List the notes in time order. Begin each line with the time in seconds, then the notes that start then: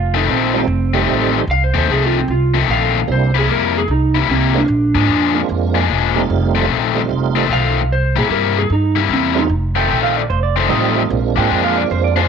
Already playing: F1 F4
0.14 F2 D#3 A3 C4 D#4
0.28 A#1 F2 D#3 A3 C4
0.53 G3 A3 C4 D#4 F4
0.67 F1
0.93 F2 D#3 G3 A3 C4 D#4 G4
1.07 A1 F2 D#3 A3 C4
1.47 C2 F5
1.64 C5
1.74 D#2 F2 D#3 A3 C4
1.78 C5
1.88 C2 F2 D#3 A3 C4 G#4
2.05 F4
2.18 C4
2.28 C2 F4
2.54 F2 D#3 A3 C4
2.68 A#1 F2 D#3 A3 C4 F5
3.07 C2 G3 A#3 C4 D4 E4
3.12 C5
3.35 C3 G3 A#3 E4 G#4
3.47 F2 C3 G3 A#3 E4
3.52 A#4
3.78 G#4
3.88 C2 D#4
4.15 C3 G3 A#3 E4
4.28 C2 C3 G3 A#3 C4 E4
4.54 G#3 A#3 C4 D4 F4
4.68 A#1
4.95 G#2 A#2 F3 G#3 D4
5.07 F2 A#2 F3 G#3 D4
5.34 G#3 A#3 C4 D4 F4
5.49 F2
5.75 A#2 F3 G#3 D4
5.89 E1 A#2 F3 G#3 D4
6.14 G3 A3 C4 D#4 F4
6.30 F1
6.55 F2 D#3 A3 C4
6.69 A#1 F2 D#3 A3 C4
6.94 G3 A3 C4 D#4 F4
7.09 F1
7.35 F2 D#3 A3 C4
7.49 B1 F2 D#3 A3 C4 F5
7.88 C2
7.92 C5
8.16 A#2 C3 G3 A#3 E4 G#4
8.29 G2 C3 G3 A#3 E4 A#4
8.59 G#4
8.70 G2 D#4
8.96 C3 G3 A#3 E4
9.09 E2 C3 G3 A#3 E4
9.13 C4
9.35 G3 A3 C4 D#4 F4
9.49 F1
9.75 F2 D#3 A3 C4 G5
9.88 A#1 F2 D#3 A3 C4
10.03 F5
10.17 D5
10.30 F1 C5
10.43 D5
10.56 F2 D#3 A3 C4 C5
10.69 A1 F2 D#3 G3 A3 C4 D#4 F4 D#5
11.09 A#1 G#3 A#3 C4 D4 F4
11.36 G#2 A#2 F3 G#3 D4 G5
11.49 F2 A#2 F3 G#3 D4
11.64 F5
11.78 D5
11.91 F2 C5
12.04 D5
12.16 A#2 F3 G#3 D4 C5